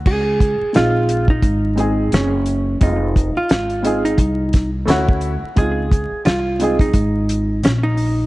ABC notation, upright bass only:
X:1
M:4/4
L:1/16
Q:"Swing 16ths" 1/4=87
K:Db
V:1 name="Upright bass" clef=bass
D,,3 z B,,,4 A,,,4 G,,,4 | F,,,3 z A,,,4 C,,4 =D,,3 z | D,,3 z C,,4 A,,,4 B,,,4 |]